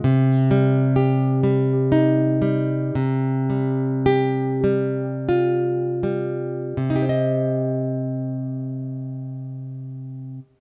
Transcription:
0.04 C3
0.51 G3
0.96 G4
1.43 G3
1.92 D#4
2.42 G3
2.95 C3
3.50 G3
4.06 G4
4.64 G3
5.29 F4
6.03 G3
6.77 C3
6.90 D#4
6.96 G4
7.02 C5
7.09 D#5

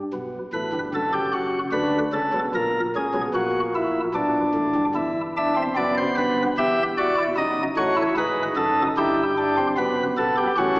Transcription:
0.13 B1 B2
0.53 A1 A2 B4
0.73 G1 G2
0.94 F#1 F#2 A4
1.13 G4
1.33 F#4
1.72 D2 D3 B4
2.13 C#2 C#3 A4
2.33 B1 B2
2.55 A#1 A#2 A#4
2.96 C#2 C#3 G#4
3.14 B1 B2
3.34 A#1 A#2 F#4
3.75 E4
4.14 B1 B2 D4
4.54 A1 A2
4.75 G1 G2
4.95 E1 E2 E4
5.37 D4 E5
5.56 C4
5.77 F#1 F#2 B3 D5
5.97 C5
6.17 G1 G2 B4
6.58 E1 E2 G4 E5
6.98 F#4 D5
7.18 E4
7.37 F#1 F#2 D#4 D#5
7.77 A1 A2 F#4 C#5
7.97 E4
8.17 G#1 G#2 D#4 B4
8.57 F#1 F#2 A4
8.97 G1 G2 E4 G4
9.38 D4
9.57 C4
9.77 F#1 F#2 B3 B4
10.17 B1 B2 A4
10.37 G4
10.58 A1 A2 C#4 F#4

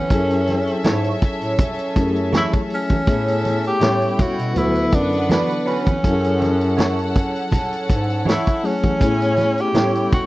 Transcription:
Already playing: D3 F#3 B3 C#4 E4 A4
0.09 F#2 F#3 C#4 E4 G#4 A4 E5, kick, closed hi-hat, muted conga
0.30 closed hi-hat
0.47 snare, closed hi-hat, muted conga
0.67 closed hi-hat
0.84 G#2 E4 A4 C#5, snare, closed hi-hat, high conga
1.04 closed hi-hat
1.22 kick, closed hi-hat
1.42 A2, closed hi-hat
1.58 kick, closed hi-hat, muted conga, low conga
1.79 closed hi-hat
1.95 F#2 F#3 A3 C#4 E4 G4, kick, closed hi-hat
2.03 G#4
2.16 closed hi-hat
2.33 E4 A4 C#5, snare, closed hi-hat, high conga
2.37 E4
2.53 kick, closed hi-hat
2.70 open hi-hat
2.74 C#4
2.89 kick, closed hi-hat, high conga
3.07 A2 A3 B3 C#4 E4 G#4 A4 E5, kick, closed hi-hat, muted conga
3.28 closed hi-hat
3.45 snare, closed hi-hat, muted conga
3.64 G4, closed hi-hat
3.80 A2 G3 B3 C#4 E4 G4 A4 C#5 G5, snare, closed hi-hat, high conga
4.02 closed hi-hat
4.19 F#4, kick, closed hi-hat, low conga
4.38 B2, closed hi-hat
4.55 D2 D3 F#3 B3 E4 A4 B4 F#5, closed hi-hat, muted conga, low conga
4.75 closed hi-hat
4.92 F#2 D4, kick, closed hi-hat
5.13 closed hi-hat
5.29 D4 F#4 B4, snare, closed hi-hat, high conga
5.50 closed hi-hat
5.66 C#4 D4 F#4 B4, open hi-hat
5.86 kick, closed hi-hat, high conga
6.03 F#2 F#3 C#4 E4 F#4 A4 F#5, kick, closed hi-hat
6.13 G#4
6.24 closed hi-hat
6.42 snare, closed hi-hat, muted conga
6.61 closed hi-hat
6.77 E4 A4 C#5, snare, closed hi-hat, high conga
6.99 closed hi-hat
7.15 kick, closed hi-hat
7.36 closed hi-hat
7.52 kick, closed hi-hat, muted conga, low conga
7.73 closed hi-hat
7.89 G#2, kick, closed hi-hat
8.10 closed hi-hat
8.25 E4 A4 C#5, snare, closed hi-hat, high conga
8.31 E4
8.47 kick, closed hi-hat
8.63 F#3 A3 C#4 E4 G#4, open hi-hat
8.67 C#4
8.83 kick, closed hi-hat, high conga
9.00 A2 A3 B3 C#4 E4 G#4 C#5 G#5, kick, closed hi-hat, muted conga
9.22 closed hi-hat
9.38 snare, closed hi-hat, muted conga
9.58 G4, closed hi-hat
9.74 A2 G3 B3 C#4 E4 G4 A4 C#5 G5, snare, closed hi-hat, high conga
9.95 closed hi-hat
10.12 F#4, kick, closed hi-hat, low conga

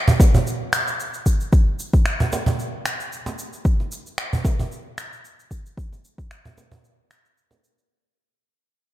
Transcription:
0.08 cajon bass, shaker
0.20 kick, cajon slap, shaker
0.34 cajon bass, shaker
0.47 shaker
0.73 finger snap, shaker
0.88 shaker
1.00 shaker
1.14 shaker
1.26 kick, shaker
1.41 shaker
1.53 kick, shaker
1.79 shaker
1.93 kick, shaker
2.06 finger snap, shaker
2.20 cajon bass, shaker
2.32 cajon slap, shaker
2.46 cajon bass, shaker
2.59 shaker
2.86 finger snap, shaker
3.00 shaker
3.13 shaker
3.26 cajon slap, shaker
3.39 shaker
3.53 shaker
3.65 kick, shaker
3.80 cajon slap
3.92 shaker
4.06 shaker
4.18 finger snap, shaker
4.33 cajon bass, shaker
4.45 kick, cajon slap, shaker
4.59 cajon bass, shaker
4.72 shaker
4.98 finger snap, shaker
5.13 shaker
5.25 shaker
5.40 shaker
5.51 kick, shaker
5.66 shaker
5.77 kick, shaker
5.92 cajon slap, shaker
6.05 shaker
6.18 kick, shaker
6.31 finger snap, shaker
6.45 cajon bass, shaker
6.58 cajon slap, shaker
6.72 cajon bass, shaker
6.84 shaker
7.11 finger snap, shaker
7.25 shaker
7.38 shaker
7.51 cajon slap, shaker
7.64 shaker
7.78 shaker

